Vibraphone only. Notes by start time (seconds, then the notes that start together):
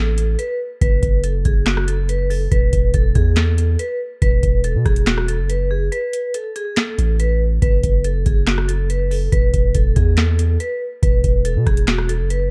Already playing: A4
0.39 B4
0.81 B4
1.24 A4
1.45 G#4
1.66 F#4
1.88 A4
2.09 B4
2.30 A4
2.51 B4
2.94 A4
3.15 G#4
3.37 A4
3.79 B4
4.22 B4
4.64 A4
4.86 G#4
5.07 F#4
5.28 A4
5.50 B4
5.71 G#4
5.92 B4
6.35 A4
6.56 G#4
6.77 A4
7.20 B4
7.62 B4
8.05 A4
8.26 G#4
8.47 F#4
8.68 A4
8.90 B4
9.11 A4
9.32 B4
9.75 A4
9.96 G#4
10.17 A4
10.60 B4
11.03 B4
11.45 A4
11.66 G#4
11.88 F#4
12.09 A4
12.30 B4